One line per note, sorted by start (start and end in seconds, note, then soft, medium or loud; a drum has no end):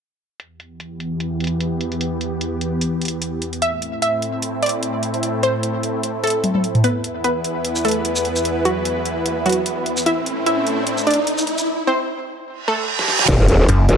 0.40 3.59 E2 medium
0.40 3.59 E3 medium
0.40 3.59 B3 medium
0.40 3.59 G4 medium
0.40 closed hi-hat medium
0.60 closed hi-hat soft
0.80 closed hi-hat medium
1.00 closed hi-hat soft
1.20 closed hi-hat medium
1.40 closed hi-hat soft
1.44 closed hi-hat medium
1.47 closed hi-hat medium
1.60 closed hi-hat medium
1.81 closed hi-hat soft
1.92 closed hi-hat soft
2.01 closed hi-hat medium
2.21 closed hi-hat soft
2.41 closed hi-hat medium
2.61 closed hi-hat soft
2.81 closed hi-hat medium
3.02 closed hi-hat soft
3.05 closed hi-hat medium
3.08 closed hi-hat medium
3.22 closed hi-hat medium
3.42 closed hi-hat medium
3.53 closed hi-hat soft
3.62 6.81 A2 medium
3.62 6.81 A3 medium
3.62 6.81 C4 medium
3.62 6.81 E4 medium
3.62 3.96 E5 loud
3.62 closed hi-hat medium
3.82 closed hi-hat soft
4.02 4.55 E5 medium
4.02 closed hi-hat medium
4.22 closed hi-hat soft
4.42 closed hi-hat medium
4.63 5.36 D5 medium
4.63 closed hi-hat soft
4.66 closed hi-hat medium
4.69 closed hi-hat medium
4.83 closed hi-hat medium
5.03 closed hi-hat soft
5.14 closed hi-hat soft
5.23 closed hi-hat medium
5.43 6.16 C5 medium
5.43 closed hi-hat soft
5.63 closed hi-hat medium
5.83 closed hi-hat soft
6.03 closed hi-hat medium
6.24 6.77 A4 medium
6.24 closed hi-hat soft
6.27 closed hi-hat medium
6.30 closed hi-hat medium
6.44 closed hi-hat medium
6.44 high tom medium
6.55 high tom medium
6.64 closed hi-hat soft
6.75 closed hi-hat soft
6.75 mid tom medium
6.84 10.03 E2 medium
6.84 10.03 E3 medium
6.84 7.18 B3 medium
6.84 10.03 B3 medium
6.84 10.03 E4 medium
6.84 11.63 B4 medium
6.84 7.18 B4 medium
6.84 closed hi-hat medium
6.84 riser medium
7.04 closed hi-hat medium
7.24 7.77 B3 medium
7.24 7.77 B4 medium
7.24 closed hi-hat medium
7.44 closed hi-hat medium
7.65 closed hi-hat medium
7.76 shaker soft
7.85 8.58 A3 medium
7.85 8.58 A4 medium
7.85 closed hi-hat soft
7.88 closed hi-hat medium
7.91 closed hi-hat medium
8.05 closed hi-hat medium
8.16 shaker medium
8.25 closed hi-hat medium
8.36 closed hi-hat soft
8.36 shaker medium
8.45 closed hi-hat medium
8.65 9.39 F#3 medium
8.65 9.39 F#4 medium
8.65 closed hi-hat medium
8.85 closed hi-hat medium
9.05 closed hi-hat medium
9.26 closed hi-hat medium
9.46 9.99 F#3 medium
9.46 9.99 F#4 medium
9.46 closed hi-hat soft
9.49 closed hi-hat medium
9.52 closed hi-hat medium
9.66 closed hi-hat medium
9.86 closed hi-hat medium
9.97 closed hi-hat soft
9.97 shaker medium
10.06 11.66 A2 medium
10.06 11.66 A3 medium
10.06 11.66 C4 medium
10.06 11.66 E4 medium
10.06 10.40 E4 medium
10.06 10.40 E5 medium
10.06 closed hi-hat medium
10.26 closed hi-hat medium
10.46 11.00 E4 medium
10.46 11.00 E5 medium
10.46 closed hi-hat medium
10.67 closed hi-hat medium
10.87 closed hi-hat medium
10.98 shaker medium
11.07 11.80 D4 medium
11.07 11.80 D5 medium
11.07 closed hi-hat soft
11.11 closed hi-hat medium
11.14 closed hi-hat medium
11.27 closed hi-hat medium
11.38 shaker medium
11.47 closed hi-hat medium
11.58 closed hi-hat soft
11.58 shaker medium
11.87 12.61 C4 medium
11.87 12.61 C5 medium
12.48 reverse cymbal medium
12.68 13.21 A3 medium
12.68 13.21 A4 medium
12.99 snare medium
13.08 snare medium
13.19 snare medium
13.28 13.67 E1 loud
13.28 13.97 E3 medium
13.28 13.97 B3 medium
13.28 13.97 G4 medium
13.28 kick loud
13.28 closed hi-hat medium
13.28 crash loud
13.28 sub drop medium
13.48 closed hi-hat medium
13.69 13.87 F#1 loud
13.69 closed hi-hat medium
13.89 13.97 E1 loud
13.89 closed hi-hat medium